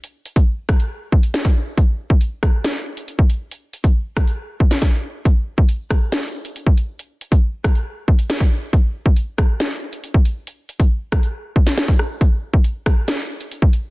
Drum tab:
HH |x-xx--xx---x-x--|x---x-x-x--xx-x-|x-xx--xx---x----|x---x-x-x--xx-x-|
SD |------r-----o---|------r-o-------|------r----oo---|------r-o-------|
BD |---o--o---o--o--|o--o--o------o--|---o--o---o-o---|o--o--o------o--|

HH |x-xx--xx---x-x--|x---x-x-x--xx-x-|x-xx--xx---x-x--|x---x-x-x--xx-x-|
SD |------r-----o---|------r-o-------|------r----oo-r-|------r-o-------|
BD |---o--o---o--o--|o--o--o------o--|---o--o---o--o--|o--o--o------o--|